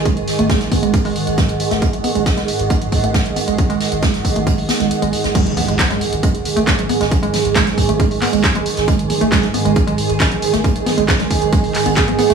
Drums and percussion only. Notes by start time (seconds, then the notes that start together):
0.05 kick, closed hi-hat
0.17 closed hi-hat
0.28 snare, closed hi-hat, open hi-hat
0.39 closed hi-hat
0.50 kick, snare, closed hi-hat
0.61 snare, closed hi-hat
0.72 kick, closed hi-hat, open hi-hat
0.83 closed hi-hat
0.94 kick, closed hi-hat
1.05 open hi-hat
1.16 open hi-hat
1.27 closed hi-hat
1.38 kick, snare, closed hi-hat
1.49 closed hi-hat
1.60 closed hi-hat, open hi-hat
1.71 snare, closed hi-hat
1.82 kick, closed hi-hat
1.93 closed hi-hat
2.04 closed hi-hat, open hi-hat
2.15 closed hi-hat
2.26 kick, snare, closed hi-hat
2.37 snare, closed hi-hat
2.48 closed hi-hat, open hi-hat
2.59 closed hi-hat
2.70 kick, closed hi-hat
2.82 closed hi-hat
2.92 kick, closed hi-hat, open hi-hat
3.04 closed hi-hat
3.14 kick, snare, closed hi-hat
3.26 closed hi-hat
3.36 closed hi-hat, open hi-hat
3.48 closed hi-hat
3.58 kick, closed hi-hat
3.70 closed hi-hat
3.80 snare, closed hi-hat, open hi-hat
3.92 closed hi-hat
4.02 kick, snare, closed hi-hat
4.14 snare, closed hi-hat
4.25 kick, closed hi-hat, open hi-hat
4.36 closed hi-hat
4.47 kick, closed hi-hat
4.58 open hi-hat
4.69 snare, closed hi-hat, open hi-hat
4.80 snare, closed hi-hat
4.91 closed hi-hat
5.02 closed hi-hat
5.13 closed hi-hat, open hi-hat
5.24 snare, closed hi-hat
5.35 kick, closed hi-hat, crash
5.46 closed hi-hat
5.57 closed hi-hat, open hi-hat, mid tom
5.68 closed hi-hat
5.79 kick, snare, clap, closed hi-hat, mid tom
5.90 snare, closed hi-hat, mid tom
6.01 closed hi-hat, open hi-hat
6.13 closed hi-hat
6.23 kick, closed hi-hat
6.35 closed hi-hat
6.45 closed hi-hat, open hi-hat
6.57 closed hi-hat
6.67 kick, snare, clap, closed hi-hat
6.79 closed hi-hat, mid tom
6.89 closed hi-hat, open hi-hat
7.01 snare, closed hi-hat
7.11 kick, closed hi-hat
7.23 closed hi-hat
7.33 snare, closed hi-hat, open hi-hat, mid tom
7.45 closed hi-hat
7.56 kick, snare, clap, closed hi-hat, mid tom
7.67 snare, closed hi-hat, mid tom
7.78 kick, closed hi-hat, open hi-hat
7.89 closed hi-hat
7.99 kick, closed hi-hat
8.11 open hi-hat
8.22 clap, open hi-hat
8.33 closed hi-hat
8.44 kick, snare, clap, closed hi-hat
8.55 closed hi-hat, mid tom
8.66 closed hi-hat, open hi-hat
8.77 snare, closed hi-hat
8.88 kick, closed hi-hat
8.99 closed hi-hat
9.10 closed hi-hat, open hi-hat, mid tom
9.21 closed hi-hat
9.32 kick, snare, clap, closed hi-hat, mid tom
9.43 snare, closed hi-hat, mid tom
9.54 closed hi-hat, open hi-hat
9.66 closed hi-hat
9.76 kick, closed hi-hat
9.88 closed hi-hat
9.98 closed hi-hat, open hi-hat
10.10 closed hi-hat
10.20 kick, snare, clap, closed hi-hat
10.32 closed hi-hat, mid tom
10.42 closed hi-hat, open hi-hat
10.53 snare, closed hi-hat
10.64 kick, closed hi-hat
10.76 closed hi-hat
10.86 snare, closed hi-hat, open hi-hat, mid tom
10.98 closed hi-hat
11.08 kick, snare, clap, closed hi-hat, mid tom
11.20 snare, closed hi-hat, mid tom
11.31 kick, closed hi-hat, open hi-hat
11.42 closed hi-hat
11.53 kick, closed hi-hat
11.64 open hi-hat
11.74 clap, open hi-hat
11.86 closed hi-hat
11.96 kick, snare, clap, closed hi-hat
12.08 closed hi-hat, mid tom
12.19 closed hi-hat, open hi-hat
12.30 snare, closed hi-hat